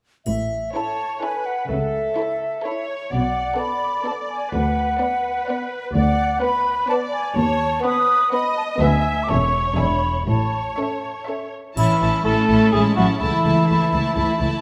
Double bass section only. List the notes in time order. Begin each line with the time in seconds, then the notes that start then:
0.26 A1
1.70 C#2
3.12 B1
4.53 D2
5.94 D2
7.37 D#2
8.81 D2
9.30 E1
9.79 E1
10.28 A1
11.77 A1
12.02 A1
12.26 A1
12.50 A1
12.73 A1
12.98 A1
13.22 C#2
13.45 C#2
13.69 C#2
13.93 C#2
14.17 C#2
14.40 C#2